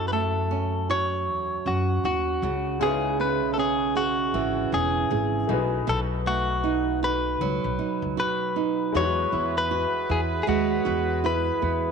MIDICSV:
0, 0, Header, 1, 6, 480
1, 0, Start_track
1, 0, Key_signature, 4, "major"
1, 0, Tempo, 766284
1, 1760, Time_signature, 4, 2, 24, 8
1, 7464, End_track
2, 0, Start_track
2, 0, Title_t, "Clean electric guitar"
2, 0, Program_c, 0, 27
2, 50, Note_on_c, 0, 71, 62
2, 79, Note_off_c, 0, 71, 0
2, 82, Note_on_c, 0, 69, 87
2, 565, Note_off_c, 0, 69, 0
2, 568, Note_on_c, 0, 73, 88
2, 1049, Note_on_c, 0, 66, 78
2, 1058, Note_off_c, 0, 73, 0
2, 1279, Note_off_c, 0, 66, 0
2, 1286, Note_on_c, 0, 66, 83
2, 1770, Note_on_c, 0, 68, 85
2, 1778, Note_off_c, 0, 66, 0
2, 2007, Note_off_c, 0, 68, 0
2, 2010, Note_on_c, 0, 71, 83
2, 2213, Note_off_c, 0, 71, 0
2, 2216, Note_on_c, 0, 69, 57
2, 2245, Note_off_c, 0, 69, 0
2, 2252, Note_on_c, 0, 68, 75
2, 2470, Note_off_c, 0, 68, 0
2, 2485, Note_on_c, 0, 66, 89
2, 2967, Note_off_c, 0, 66, 0
2, 2969, Note_on_c, 0, 68, 84
2, 3689, Note_off_c, 0, 68, 0
2, 3692, Note_on_c, 0, 69, 88
2, 3755, Note_off_c, 0, 69, 0
2, 3930, Note_on_c, 0, 66, 76
2, 4380, Note_off_c, 0, 66, 0
2, 4411, Note_on_c, 0, 71, 87
2, 5127, Note_off_c, 0, 71, 0
2, 5135, Note_on_c, 0, 71, 84
2, 5614, Note_off_c, 0, 71, 0
2, 5617, Note_on_c, 0, 73, 89
2, 5997, Note_off_c, 0, 73, 0
2, 6000, Note_on_c, 0, 71, 79
2, 6336, Note_on_c, 0, 68, 77
2, 6338, Note_off_c, 0, 71, 0
2, 6389, Note_off_c, 0, 68, 0
2, 6535, Note_on_c, 0, 68, 60
2, 6565, Note_off_c, 0, 68, 0
2, 6569, Note_on_c, 0, 66, 78
2, 7053, Note_on_c, 0, 71, 91
2, 7060, Note_off_c, 0, 66, 0
2, 7464, Note_off_c, 0, 71, 0
2, 7464, End_track
3, 0, Start_track
3, 0, Title_t, "Woodwind section"
3, 0, Program_c, 1, 71
3, 5602, Note_on_c, 1, 64, 59
3, 5602, Note_on_c, 1, 66, 65
3, 5603, Note_on_c, 1, 54, 69
3, 5603, Note_on_c, 1, 68, 69
3, 5603, Note_on_c, 1, 71, 76
3, 7464, Note_off_c, 1, 54, 0
3, 7464, Note_off_c, 1, 64, 0
3, 7464, Note_off_c, 1, 66, 0
3, 7464, Note_off_c, 1, 68, 0
3, 7464, Note_off_c, 1, 71, 0
3, 7464, End_track
4, 0, Start_track
4, 0, Title_t, "Upright piano"
4, 0, Program_c, 2, 0
4, 1632, Control_c, 2, 64, 127
4, 1750, Note_on_c, 2, 56, 54
4, 1757, Note_on_c, 2, 61, 54
4, 1765, Note_on_c, 2, 63, 41
4, 1773, Note_on_c, 2, 71, 59
4, 1805, Note_on_c, 2, 64, 55
4, 1811, Note_off_c, 2, 63, 0
4, 3410, Note_off_c, 2, 56, 0
4, 3414, Note_off_c, 2, 61, 0
4, 3422, Note_off_c, 2, 71, 0
4, 3429, Note_on_c, 2, 57, 57
4, 3437, Note_on_c, 2, 63, 56
4, 3438, Note_off_c, 2, 64, 0
4, 3447, Note_on_c, 2, 66, 57
4, 3448, Control_c, 2, 64, 0
4, 3455, Note_on_c, 2, 71, 68
4, 3556, Control_c, 2, 64, 127
4, 5330, Note_off_c, 2, 57, 0
4, 5334, Note_off_c, 2, 63, 0
4, 5339, Note_off_c, 2, 66, 0
4, 5343, Note_off_c, 2, 71, 0
4, 5589, Note_on_c, 2, 56, 60
4, 5598, Note_on_c, 2, 64, 57
4, 5607, Note_on_c, 2, 66, 52
4, 5609, Control_c, 2, 64, 0
4, 5616, Note_on_c, 2, 71, 65
4, 5734, Control_c, 2, 64, 127
4, 7464, Note_off_c, 2, 56, 0
4, 7464, Note_off_c, 2, 64, 0
4, 7464, Note_off_c, 2, 66, 0
4, 7464, Note_off_c, 2, 71, 0
4, 7464, End_track
5, 0, Start_track
5, 0, Title_t, "Nylon-string guitar"
5, 0, Program_c, 3, 24
5, 0, Note_on_c, 3, 42, 71
5, 0, Note_on_c, 3, 64, 49
5, 0, Note_on_c, 3, 66, 63
5, 76, Note_on_c, 3, 57, 55
5, 316, Note_off_c, 3, 64, 0
5, 318, Note_on_c, 3, 61, 54
5, 553, Note_off_c, 3, 66, 0
5, 561, Note_on_c, 3, 66, 56
5, 1039, Note_off_c, 3, 61, 0
5, 1042, Note_on_c, 3, 61, 53
5, 1275, Note_off_c, 3, 66, 0
5, 1283, Note_on_c, 3, 66, 67
5, 1524, Note_on_c, 3, 49, 70
5, 1576, Note_off_c, 3, 42, 0
5, 1576, Note_off_c, 3, 57, 0
5, 1579, Note_off_c, 3, 66, 0
5, 1751, Note_off_c, 3, 49, 0
5, 1758, Note_on_c, 3, 49, 75
5, 1763, Note_on_c, 3, 68, 59
5, 2001, Note_on_c, 3, 59, 56
5, 2020, Note_off_c, 3, 61, 0
5, 2240, Note_on_c, 3, 61, 55
5, 2469, Note_off_c, 3, 68, 0
5, 2476, Note_on_c, 3, 68, 56
5, 2719, Note_on_c, 3, 52, 70
5, 2950, Note_off_c, 3, 61, 0
5, 2957, Note_on_c, 3, 61, 53
5, 3190, Note_off_c, 3, 68, 0
5, 3198, Note_on_c, 3, 68, 66
5, 3436, Note_off_c, 3, 49, 0
5, 3438, Note_on_c, 3, 47, 70
5, 3497, Note_off_c, 3, 52, 0
5, 3497, Note_off_c, 3, 61, 0
5, 3497, Note_off_c, 3, 68, 0
5, 3669, Note_off_c, 3, 47, 0
5, 3677, Note_on_c, 3, 47, 78
5, 3682, Note_on_c, 3, 66, 60
5, 3919, Note_off_c, 3, 59, 0
5, 3922, Note_on_c, 3, 57, 62
5, 4157, Note_on_c, 3, 63, 56
5, 4399, Note_off_c, 3, 66, 0
5, 4402, Note_on_c, 3, 66, 56
5, 4642, Note_on_c, 3, 54, 76
5, 4871, Note_off_c, 3, 63, 0
5, 4878, Note_on_c, 3, 63, 57
5, 5117, Note_off_c, 3, 66, 0
5, 5119, Note_on_c, 3, 66, 66
5, 5355, Note_off_c, 3, 63, 0
5, 5362, Note_on_c, 3, 63, 54
5, 5599, Note_off_c, 3, 47, 0
5, 5604, Note_off_c, 3, 66, 0
5, 5607, Note_on_c, 3, 66, 67
5, 5659, Note_off_c, 3, 57, 0
5, 5659, Note_off_c, 3, 63, 0
5, 5840, Note_on_c, 3, 64, 57
5, 5859, Note_off_c, 3, 54, 0
5, 6080, Note_off_c, 3, 66, 0
5, 6082, Note_on_c, 3, 66, 65
5, 6321, Note_off_c, 3, 64, 0
5, 6323, Note_on_c, 3, 64, 52
5, 6559, Note_on_c, 3, 56, 72
5, 6794, Note_off_c, 3, 66, 0
5, 6796, Note_on_c, 3, 66, 60
5, 7037, Note_off_c, 3, 64, 0
5, 7040, Note_on_c, 3, 64, 66
5, 7279, Note_on_c, 3, 59, 57
5, 7464, Note_off_c, 3, 56, 0
5, 7464, Note_off_c, 3, 59, 0
5, 7464, Note_off_c, 3, 64, 0
5, 7464, Note_off_c, 3, 66, 0
5, 7464, End_track
6, 0, Start_track
6, 0, Title_t, "Upright bass"
6, 0, Program_c, 4, 32
6, 0, Note_on_c, 4, 42, 90
6, 799, Note_off_c, 4, 42, 0
6, 799, Note_on_c, 4, 40, 86
6, 996, Note_off_c, 4, 40, 0
6, 1038, Note_on_c, 4, 42, 83
6, 1236, Note_off_c, 4, 42, 0
6, 1277, Note_on_c, 4, 39, 78
6, 1475, Note_off_c, 4, 39, 0
6, 1517, Note_on_c, 4, 37, 83
6, 2143, Note_off_c, 4, 37, 0
6, 2143, Note_on_c, 4, 35, 73
6, 2695, Note_off_c, 4, 35, 0
6, 2717, Note_on_c, 4, 32, 75
6, 2915, Note_off_c, 4, 32, 0
6, 2959, Note_on_c, 4, 28, 86
6, 3156, Note_off_c, 4, 28, 0
6, 3202, Note_on_c, 4, 32, 86
6, 3398, Note_off_c, 4, 32, 0
6, 3438, Note_on_c, 4, 35, 83
6, 3636, Note_off_c, 4, 35, 0
6, 3679, Note_on_c, 4, 35, 97
6, 4615, Note_off_c, 4, 35, 0
6, 4641, Note_on_c, 4, 37, 82
6, 4759, Note_off_c, 4, 37, 0
6, 4787, Note_on_c, 4, 35, 85
6, 4865, Note_off_c, 4, 35, 0
6, 5025, Note_on_c, 4, 37, 82
6, 5104, Note_off_c, 4, 37, 0
6, 5603, Note_on_c, 4, 40, 91
6, 5799, Note_off_c, 4, 40, 0
6, 5843, Note_on_c, 4, 40, 82
6, 6157, Note_off_c, 4, 40, 0
6, 6323, Note_on_c, 4, 40, 85
6, 6519, Note_off_c, 4, 40, 0
6, 6564, Note_on_c, 4, 39, 81
6, 6760, Note_off_c, 4, 39, 0
6, 6803, Note_on_c, 4, 40, 91
6, 7196, Note_off_c, 4, 40, 0
6, 7280, Note_on_c, 4, 40, 78
6, 7464, Note_off_c, 4, 40, 0
6, 7464, End_track
0, 0, End_of_file